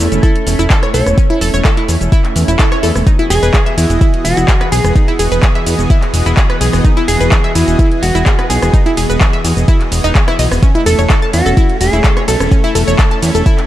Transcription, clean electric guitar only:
0, 0, Header, 1, 2, 480
1, 0, Start_track
1, 0, Key_signature, 4, "major"
1, 0, Tempo, 472441
1, 1195, Time_signature, 4, 2, 24, 8
1, 13885, End_track
2, 0, Start_track
2, 0, Title_t, "Clean electric guitar"
2, 0, Program_c, 0, 27
2, 0, Note_on_c, 0, 69, 100
2, 193, Note_off_c, 0, 69, 0
2, 231, Note_on_c, 0, 69, 100
2, 912, Note_off_c, 0, 69, 0
2, 953, Note_on_c, 0, 73, 106
2, 1400, Note_off_c, 0, 73, 0
2, 3356, Note_on_c, 0, 68, 113
2, 3802, Note_off_c, 0, 68, 0
2, 3836, Note_on_c, 0, 64, 99
2, 4314, Note_on_c, 0, 66, 103
2, 4330, Note_off_c, 0, 64, 0
2, 4791, Note_off_c, 0, 66, 0
2, 4795, Note_on_c, 0, 68, 98
2, 6194, Note_off_c, 0, 68, 0
2, 7194, Note_on_c, 0, 68, 113
2, 7641, Note_off_c, 0, 68, 0
2, 7676, Note_on_c, 0, 64, 99
2, 8154, Note_on_c, 0, 66, 105
2, 8170, Note_off_c, 0, 64, 0
2, 8629, Note_off_c, 0, 66, 0
2, 8633, Note_on_c, 0, 68, 102
2, 10034, Note_off_c, 0, 68, 0
2, 11036, Note_on_c, 0, 69, 111
2, 11514, Note_off_c, 0, 69, 0
2, 11518, Note_on_c, 0, 66, 103
2, 11963, Note_off_c, 0, 66, 0
2, 11999, Note_on_c, 0, 68, 107
2, 12474, Note_off_c, 0, 68, 0
2, 12478, Note_on_c, 0, 69, 97
2, 13876, Note_off_c, 0, 69, 0
2, 13885, End_track
0, 0, End_of_file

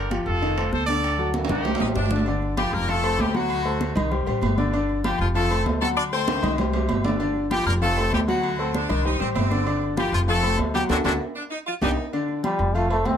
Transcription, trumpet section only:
0, 0, Header, 1, 2, 480
1, 0, Start_track
1, 0, Tempo, 308325
1, 1611, Time_signature, 4, 2, 24, 8
1, 20506, End_track
2, 0, Start_track
2, 0, Title_t, "Trumpet section"
2, 0, Program_c, 0, 61
2, 0, Note_on_c, 0, 67, 72
2, 0, Note_on_c, 0, 70, 95
2, 166, Note_off_c, 0, 70, 0
2, 176, Note_off_c, 0, 67, 0
2, 382, Note_on_c, 0, 69, 97
2, 413, Note_on_c, 0, 65, 73
2, 1065, Note_off_c, 0, 69, 0
2, 1082, Note_off_c, 0, 65, 0
2, 1109, Note_on_c, 0, 72, 94
2, 1143, Note_on_c, 0, 69, 82
2, 1348, Note_on_c, 0, 74, 111
2, 1353, Note_off_c, 0, 69, 0
2, 1360, Note_off_c, 0, 72, 0
2, 1372, Note_on_c, 0, 69, 86
2, 2029, Note_off_c, 0, 74, 0
2, 2041, Note_off_c, 0, 69, 0
2, 2319, Note_on_c, 0, 67, 92
2, 2341, Note_on_c, 0, 63, 72
2, 2995, Note_off_c, 0, 67, 0
2, 3006, Note_off_c, 0, 63, 0
2, 20506, End_track
0, 0, End_of_file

